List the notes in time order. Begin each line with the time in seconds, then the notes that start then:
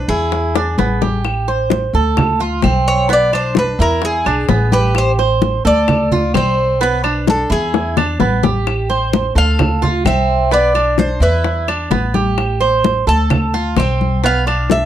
0.08 E2 E4 G#4, high conga
0.32 high bongo, high conga
0.55 D4, high bongo, high conga
0.78 A1 B3, high bongo, high conga
1.02 G4, low bongo, high conga
1.25 high bongo, high conga, claves
1.48 C5, high bongo, high conga
1.70 high bongo, high conga
1.93 D2 A4, high bongo, high conga
2.17 high bongo, high conga, low conga, claves
2.40 F4, high bongo, high conga
2.62 B1 C4, high bongo, low bongo, high conga, claves
2.88 C#5
3.09 B3 D5, high bongo, high conga
3.33 D4 C5, high bongo, high conga, claves
3.55 B4, high bongo, high conga
3.79 E2 E4 A#4, high conga
4.02 G#4, high bongo, high conga
4.25 B1 D4, high bongo, high conga, claves
4.49 A1 B3, high bongo, low bongo, high conga
4.72 G4 B4, high bongo, high conga
4.95 C5, high bongo, high conga, claves
5.19 C5, high bongo, high conga
5.42 high bongo, high conga
5.65 D2 A4 D5, high bongo, high conga
5.88 high bongo, high conga, low conga, claves
6.11 F4, high bongo, high conga, low conga
6.34 B1 C4 C5, high bongo, low bongo, high conga, claves
6.81 B3 B4, high bongo, high conga
7.04 D4, high bongo, high conga, claves
7.27 A4, high bongo, high conga
7.50 E2 E4 G#4, high conga
7.74 high bongo, high conga
7.97 D4, low bongo, high conga, claves
8.20 A1 B3, low bongo, high conga
8.43 G4, low bongo, high conga
8.67 high bongo, high conga, claves
8.90 C5, high bongo, high conga
9.13 high bongo, high conga
9.35 D2 A4 F5, high bongo, high conga
9.59 high bongo, high conga, low conga, claves
9.82 F4, high bongo, high conga, low conga
10.05 B1 C4 E5, high bongo, low bongo, high conga, claves
10.51 B3 D5, high bongo, high conga
10.75 D4, high bongo, high conga, claves
10.98 C5, high bongo, high conga
11.20 E2 E4 B4, high conga
11.44 high bongo, high conga
11.68 D4, high bongo, high conga, claves
11.90 A1 B3, high bongo, low bongo, high conga
12.14 G4, high bongo, high conga
12.38 high bongo, high conga, claves
12.61 C5, high bongo, high conga
12.84 high bongo, high conga
13.07 D2 A4 A5, high bongo, high conga
13.30 high bongo, high conga, low conga, claves
13.54 F4, high bongo, high conga
13.76 B1 C4 G5, high bongo, low bongo, high conga, claves
14.01 high conga
14.24 B3 F5, high bongo, high conga
14.47 D4, high bongo, high conga, claves
14.70 E5, high bongo, high conga